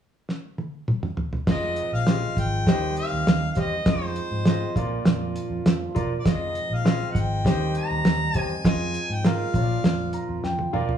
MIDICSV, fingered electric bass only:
0, 0, Header, 1, 2, 480
1, 0, Start_track
1, 0, Tempo, 597610
1, 1185, Time_signature, 4, 2, 24, 8
1, 8818, End_track
2, 0, Start_track
2, 0, Title_t, "Fingered electric bass"
2, 0, Program_c, 0, 33
2, 1184, Note_on_c, 0, 29, 97
2, 1446, Note_off_c, 0, 29, 0
2, 1543, Note_on_c, 0, 34, 80
2, 1806, Note_off_c, 0, 34, 0
2, 1902, Note_on_c, 0, 32, 90
2, 2142, Note_on_c, 0, 39, 89
2, 2154, Note_off_c, 0, 32, 0
2, 2405, Note_off_c, 0, 39, 0
2, 2506, Note_on_c, 0, 39, 72
2, 2592, Note_off_c, 0, 39, 0
2, 2625, Note_on_c, 0, 39, 82
2, 2799, Note_off_c, 0, 39, 0
2, 2865, Note_on_c, 0, 40, 86
2, 3039, Note_off_c, 0, 40, 0
2, 3104, Note_on_c, 0, 41, 105
2, 3366, Note_off_c, 0, 41, 0
2, 3461, Note_on_c, 0, 44, 77
2, 3724, Note_off_c, 0, 44, 0
2, 3823, Note_on_c, 0, 34, 94
2, 3997, Note_off_c, 0, 34, 0
2, 4060, Note_on_c, 0, 41, 104
2, 4323, Note_off_c, 0, 41, 0
2, 4416, Note_on_c, 0, 41, 70
2, 4505, Note_off_c, 0, 41, 0
2, 4542, Note_on_c, 0, 41, 78
2, 4717, Note_off_c, 0, 41, 0
2, 4790, Note_on_c, 0, 28, 82
2, 4962, Note_off_c, 0, 28, 0
2, 5027, Note_on_c, 0, 29, 96
2, 5287, Note_off_c, 0, 29, 0
2, 5380, Note_on_c, 0, 34, 78
2, 5643, Note_off_c, 0, 34, 0
2, 5744, Note_on_c, 0, 32, 84
2, 5986, Note_on_c, 0, 39, 94
2, 5998, Note_off_c, 0, 32, 0
2, 6247, Note_off_c, 0, 39, 0
2, 6347, Note_on_c, 0, 39, 76
2, 6433, Note_off_c, 0, 39, 0
2, 6468, Note_on_c, 0, 39, 75
2, 6641, Note_off_c, 0, 39, 0
2, 6709, Note_on_c, 0, 40, 80
2, 6881, Note_off_c, 0, 40, 0
2, 6944, Note_on_c, 0, 41, 102
2, 7206, Note_off_c, 0, 41, 0
2, 7306, Note_on_c, 0, 44, 76
2, 7567, Note_off_c, 0, 44, 0
2, 7664, Note_on_c, 0, 34, 88
2, 7839, Note_off_c, 0, 34, 0
2, 7907, Note_on_c, 0, 41, 93
2, 8168, Note_off_c, 0, 41, 0
2, 8263, Note_on_c, 0, 41, 75
2, 8351, Note_off_c, 0, 41, 0
2, 8386, Note_on_c, 0, 41, 77
2, 8560, Note_off_c, 0, 41, 0
2, 8627, Note_on_c, 0, 28, 80
2, 8801, Note_off_c, 0, 28, 0
2, 8818, End_track
0, 0, End_of_file